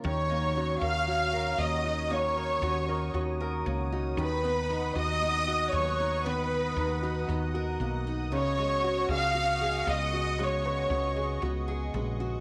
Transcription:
0.00 2.10 D#3 medium
0.00 0.32 C#4 soft
0.00 0.15 F4 medium
0.04 0.78 D#2 loud
0.04 4.14 D#3 medium
0.04 4.14 F#4 medium
0.04 4.14 C#5 medium
0.04 0.78 C#5 medium
0.04 0.78 C#6 medium
0.04 8.28 D#6 medium
0.29 1.57 A#3 medium
0.29 0.81 D#4 medium
0.56 1.06 C#4 medium
0.56 1.06 F#4 medium
0.81 1.55 D#2 medium
0.81 1.85 D#4 medium
0.81 1.33 A#4 soft
0.81 1.60 F5 loud
0.81 1.60 F6 medium
1.07 1.58 C#4 medium
1.07 1.84 F#4 medium
1.33 3.40 A#4 medium
1.33 2.35 A#4 medium
1.58 2.58 D#2 medium
1.58 2.10 A#3 soft
1.58 2.62 C#4 medium
1.58 2.12 D#5 medium
1.58 2.12 D#6 medium
1.85 2.37 D#4 medium
1.85 2.62 F#4 soft
2.10 4.18 D#3 medium
2.10 3.65 A#3 medium
2.10 3.15 C#5 medium
2.10 3.16 C#6 medium
2.37 2.88 D#4 medium
2.37 2.88 A#4 medium
2.62 3.10 D#2 loud
2.62 3.13 C#4 medium
2.62 3.13 F#4 medium
2.88 3.92 D#4 medium
2.88 3.40 A#4 medium
3.14 3.62 D#2 medium
3.14 3.65 C#4 medium
3.14 3.91 F#4 medium
3.40 4.73 A#4 medium
3.40 4.16 A#4 medium
3.66 4.14 C#2 medium
3.66 4.16 A#3 soft
3.66 4.28 C#4 medium
3.92 4.44 D#4 medium
3.92 4.17 F#4 medium
4.16 4.91 D#2 loud
4.16 6.25 D#3 medium
4.16 8.28 D#3 medium
4.16 4.92 B4 medium
4.16 12.40 D#5 medium
4.16 8.27 F#5 medium
4.16 4.93 B5 medium
4.44 6.24 B3 medium
4.44 4.94 D#4 medium
4.69 5.22 B3 medium
4.69 5.20 D#4 medium
4.95 5.69 D#2 medium
4.95 5.99 D#4 medium
4.95 5.46 F#4 soft
4.95 5.69 D#5 loud
4.95 5.70 D#6 medium
5.22 5.73 B3 medium
5.22 5.98 D#4 medium
5.48 7.01 F#4 medium
5.72 6.72 D#2 medium
5.72 7.76 F#3 soft
5.72 6.77 B3 medium
5.72 6.24 C#5 medium
5.72 6.26 C#6 medium
6.00 6.75 D#4 medium
6.00 6.50 D#4 medium
6.25 8.31 D#3 medium
6.25 8.28 B3 medium
6.25 7.29 B4 medium
6.25 7.30 B5 medium
6.51 7.02 D#4 medium
6.76 7.25 D#2 medium
6.76 7.29 B3 medium
6.76 7.26 D#4 medium
7.03 8.06 D#4 medium
7.03 7.53 F#4 medium
7.28 7.76 D#2 medium
7.28 7.80 B3 medium
7.28 8.05 D#4 medium
7.54 8.29 F#4 medium
7.54 8.42 A#4 medium
7.80 8.31 B1 medium
7.80 8.30 A#3 soft
7.80 8.84 B3 medium
8.06 8.31 D#4 soft
8.06 8.43 D#4 medium
8.31 9.05 C#2 loud
8.31 10.38 C#3 medium
8.31 12.40 C#3 medium
8.31 12.40 F#4 medium
8.31 9.07 C#5 loud
8.31 12.40 C#6 medium
8.31 9.06 C#6 medium
8.58 9.85 G#3 medium
8.58 9.09 F#4 medium
8.84 9.34 B3 medium
8.84 9.33 F#4 medium
9.09 9.82 C#2 medium
9.09 10.13 F#4 medium
9.09 9.60 G#4 medium
9.09 9.88 F6 medium
9.14 9.89 F5 loud
9.35 9.86 B3 medium
9.35 10.12 F#4 medium
9.61 11.15 G#4 medium
9.61 11.67 G#4 medium
9.87 10.86 C#2 loud
9.87 10.37 G#3 medium
9.87 10.91 B3 medium
9.87 10.40 D#6 medium
9.91 10.41 D#5 loud
10.13 10.65 F#4 medium
10.13 10.89 F#4 medium
10.39 12.40 C#3 medium
10.39 11.93 G#3 medium
10.39 11.43 C#6 medium
10.43 11.44 C#5 medium
10.65 11.16 F#4 medium
10.65 12.40 B4 medium
10.90 11.38 C#2 medium
10.90 11.42 B3 medium
10.90 11.41 F#4 medium
11.16 12.20 F#4 medium
11.16 11.67 G#4 medium
11.42 11.90 C#2 medium
11.42 11.94 B3 medium
11.42 12.19 F#4 medium
11.68 12.40 G#4 medium
11.94 12.40 A#1 medium
11.94 12.40 G#3 medium
11.94 12.40 B3 medium
12.20 12.40 F#4 medium
12.20 12.40 F#4 soft

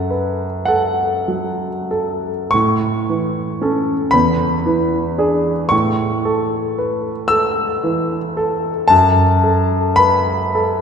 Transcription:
0.00 2.49 F#2 soft
0.00 0.44 A4 soft
0.00 0.64 F#5 medium
0.10 0.67 B4 soft
0.65 1.66 A4 soft
0.65 2.52 F#5 medium
1.28 2.29 F#3 soft
1.91 2.52 A4 soft
2.51 4.10 A2 medium
2.51 4.13 C#6 medium
3.09 3.93 E3 soft
3.62 4.09 C#4 soft
3.62 4.10 A4 soft
4.11 5.68 E2 medium
4.11 5.71 B5 medium
4.66 5.51 E3 soft
5.18 5.68 D4 soft
5.18 5.68 G#4 soft
5.69 8.87 A2 soft
5.69 7.30 C#6 medium
6.25 7.10 A4 soft
6.78 7.31 B4 soft
7.28 8.16 A4 soft
7.28 7.83 E6 medium
7.84 8.69 E3 soft
8.37 8.90 A4 soft
8.88 10.81 F#2 medium
8.88 9.97 A5 medium
9.44 10.32 A4 soft
9.96 10.55 B4 soft
9.96 10.81 B5 medium
10.55 10.81 A4 soft

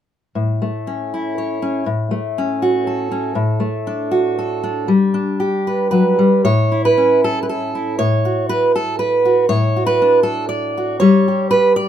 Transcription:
0.35 1.86 A2 soft
0.62 2.11 A3 soft
0.87 1.61 C#4 soft
1.14 1.88 E4 soft
1.38 1.84 C#5 soft
1.62 1.84 C#4 soft
1.86 3.34 A2 medium
2.11 3.33 A3 soft
2.38 3.10 C#4 soft
2.62 3.34 F#4 soft
2.87 4.37 A4 soft
3.11 3.33 C#4 soft
3.35 4.88 A2 medium
3.60 4.85 A3 soft
3.87 4.62 D4 soft
4.11 4.85 F#4 soft
4.39 4.89 A4 soft
4.63 4.86 D4 soft
4.88 6.17 G3 medium
5.14 6.41 D4 medium
5.40 6.41 G4 soft
5.67 5.90 B4 medium
5.91 6.18 F#3 soft
5.91 6.44 B4 medium
6.19 6.44 G3 medium
6.45 7.98 A2 medium
6.45 6.83 C#5 medium
6.72 7.73 E4 soft
6.85 7.22 B4 medium
6.98 7.96 C#4 soft
7.24 7.41 A4 medium
7.43 7.48 B4 medium
7.49 7.98 A4 medium
7.75 7.99 E4 soft
7.99 9.48 A2 medium
7.99 8.49 C#5 medium
8.25 9.24 F#4 soft
8.49 8.74 B4 medium
8.76 8.99 A4 medium
8.99 9.49 B4 medium
9.25 9.46 F#4 soft
9.49 11.00 A2 medium
9.49 9.86 C#5 medium
9.76 10.76 F#4 soft
9.86 10.23 B4 medium
10.02 11.03 D4 soft
10.23 10.48 A4 medium
10.49 10.99 D5 medium
10.77 10.98 F#4 soft
11.00 11.88 G3 medium
11.00 11.50 C#5 medium
11.28 11.88 G4 soft
11.51 11.76 B4 medium
11.76 11.88 D5 medium

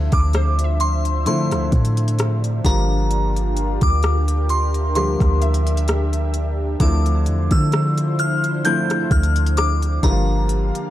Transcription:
0.00 1.09 D3 medium
0.00 1.09 F3 medium
0.00 2.61 F3 medium
0.00 1.09 A3 medium
0.00 1.09 C4 medium
0.00 10.90 D4 medium
0.00 1.09 E4 medium
0.00 2.61 C5 medium
0.00 0.63 E5 medium
0.00 2.61 E5 medium
0.00 0.17 A5 medium
0.12 1.28 D2 loud
0.12 0.82 D6 loud
0.12 kick medium
0.12 closed hi-hat medium
0.33 3.07 C5 medium
0.33 cross-stick loud
0.33 closed hi-hat soft
0.59 closed hi-hat medium
0.64 3.34 E5 medium
0.80 1.26 C6 medium
0.80 closed hi-hat medium
1.05 closed hi-hat soft
1.26 2.63 D3 medium
1.26 1.53 D3 loud
1.26 2.63 F3 medium
1.26 2.65 A3 medium
1.26 2.65 C4 medium
1.26 2.65 E4 medium
1.26 2.15 C6 medium
1.26 closed hi-hat medium
1.51 1.72 D2 medium
1.51 cross-stick medium
1.51 closed hi-hat soft
1.72 2.61 A2 medium
1.72 kick medium
1.72 closed hi-hat medium
1.85 closed hi-hat medium
1.97 closed hi-hat medium
2.08 closed hi-hat medium
2.19 cross-stick loud
2.19 closed hi-hat medium
2.44 closed hi-hat soft
2.64 3.78 G1 loud
2.64 4.32 D3 medium
2.64 4.32 F3 medium
2.64 4.32 G3 medium
2.64 4.32 A#3 medium
2.64 4.47 F4 medium
2.64 4.33 F4 medium
2.64 6.76 G4 medium
2.64 6.76 A#4 medium
2.64 3.86 A#5 medium
2.64 kick loud
2.64 closed hi-hat medium
3.11 closed hi-hat medium
3.36 closed hi-hat medium
3.57 closed hi-hat medium
3.81 5.16 D2 loud
3.81 4.52 D6 loud
3.81 kick medium
3.81 closed hi-hat medium
4.03 cross-stick loud
4.03 closed hi-hat soft
4.28 closed hi-hat medium
4.49 6.78 E5 medium
4.49 4.95 C6 medium
4.49 closed hi-hat medium
4.74 closed hi-hat soft
4.95 6.63 D3 medium
4.95 6.63 F3 medium
4.95 6.63 G3 medium
4.95 6.63 A#3 medium
4.95 6.63 G4 medium
4.95 5.84 C6 medium
4.95 closed hi-hat medium
5.20 6.76 D2 loud
5.20 kick medium
5.20 cross-stick medium
5.20 closed hi-hat soft
5.42 7.22 E5 medium
5.42 closed hi-hat medium
5.54 closed hi-hat medium
5.67 closed hi-hat medium
5.77 closed hi-hat medium
5.88 cross-stick loud
5.88 closed hi-hat medium
6.13 closed hi-hat medium
6.34 closed hi-hat medium
6.80 7.28 D2 loud
6.80 8.47 D3 medium
6.80 8.48 F3 medium
6.80 10.00 F3 medium
6.80 8.48 A3 medium
6.80 8.48 C4 medium
6.80 10.00 E4 medium
6.80 8.48 E4 medium
6.80 10.00 C5 medium
6.80 9.72 A5 medium
6.80 7.54 D6 medium
6.80 kick loud
6.80 closed hi-hat medium
7.06 closed hi-hat medium
7.26 7.50 E2 loud
7.26 closed hi-hat medium
7.51 9.07 D3 loud
7.51 8.21 E6 loud
7.51 kick medium
7.51 closed hi-hat medium
7.72 cross-stick loud
7.72 closed hi-hat soft
7.98 closed hi-hat medium
8.19 8.67 F6 loud
8.19 closed hi-hat medium
8.44 closed hi-hat soft
8.64 10.01 D3 medium
8.64 10.02 F3 medium
8.64 10.03 A3 medium
8.64 10.04 C4 medium
8.64 10.03 E4 medium
8.64 9.13 G6 loud
8.64 closed hi-hat medium
8.90 cross-stick medium
8.90 closed hi-hat soft
9.11 10.00 D2 loud
9.11 9.54 F6 medium
9.11 kick medium
9.11 closed hi-hat medium
9.23 closed hi-hat medium
9.36 closed hi-hat medium
9.46 closed hi-hat medium
9.57 10.05 D6 loud
9.57 cross-stick loud
9.57 closed hi-hat medium
9.82 closed hi-hat medium
10.03 10.72 G1 loud
10.03 10.90 D3 medium
10.03 10.90 F3 medium
10.03 10.90 G3 medium
10.03 10.90 A#3 medium
10.03 10.11 E4 medium
10.03 10.90 G4 medium
10.03 10.90 A#4 medium
10.03 10.90 F5 medium
10.03 10.90 A#5 medium
10.03 kick loud
10.03 closed hi-hat medium
10.11 10.90 F4 medium
10.49 closed hi-hat medium
10.75 closed hi-hat medium

